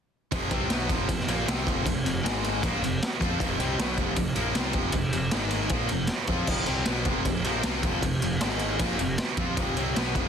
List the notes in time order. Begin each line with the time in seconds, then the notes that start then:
0.32 F1 F2 C3 F3 C4 G4, kick, ride
0.50 C2 C3 G3 C4, kick, ride
0.69 B1 B2 F#3 B3, snare, ride
0.89 F1 F2 C3 F3, kick, ride
1.08 F1 F2 C3, kick, ride
1.19 snare
1.27 A#1 A#2 F3 A#3, ride
1.46 C2 C3 G3 C4, snare, ride
1.65 F1 F2 C3 F3, kick, ride
1.85 F1 F2 C3, kick, ride
2.04 F1 F2 C3, ride
2.23 G#1 G#2 D#3 G#3 D#4 A#4, snare, ride
2.44 ride
2.62 A#1 A#2 F3 A#3 C4 G4, kick, ride
2.82 F1 F2 C3, ride
3.02 snare, ride
3.20 F2 F3 C4 F4, kick, ride
3.40 F1 F2 C3 F3, kick, ride
3.59 C2 C3 G3 C4, ride
3.79 B1 B2 F#3 B3, snare, ride
3.98 F1 F2 C3 F3, kick, ride
4.16 F1 F2 C3, kick, ride
4.36 A#1 A#2 F3 A#3, ride
4.54 C2 C3 G3 C4, snare, ride
4.73 F1 F2 C3 F3, kick, ride
4.92 F1 F2 C3, kick, ride
5.13 F1 F2 C3, ride
5.31 G#1 G#2 D#3 G#3 D#4 A#4, snare, ride
5.51 ride
5.69 A#1 A#2 F3 A#3 C4 G4, kick, ride
5.89 F1 F2 C3, ride
6.07 snare, ride
6.27 F2 F3 C4 F4, kick, ride
6.47 F1 F2 C3 F3, kick, crash
6.66 C2 C3 G3 C4, ride
6.85 B1 B2 F#3 B3, snare, ride
7.05 F1 F2 C3 F3, kick, ride
7.25 F1 F2 C3, kick, ride
7.44 A#1 A#2 F3 A#3, ride
7.63 C2 C3 G3 C4, snare, ride
7.83 F1 F2 C3 F3, kick, ride
8.02 F1 F2 C3, kick, ride
8.22 F1 F2 C3, ride
8.41 G#1 G#2 D#3 G#3 D#4 A#4, snare, ride
8.59 ride
8.79 A#1 A#2 F3 A#3 C4 G4, kick, ride
8.99 F1 F2 C3, ride
9.18 snare, ride
9.37 F2 F3 C4 F4, kick, ride
9.56 F1 F2 C3 F3, kick, ride
9.77 C2 C3 G3 C4, ride
9.96 B1 B2 F#3 B3, snare, ride
10.15 F1 F2 C3 F3, kick, ride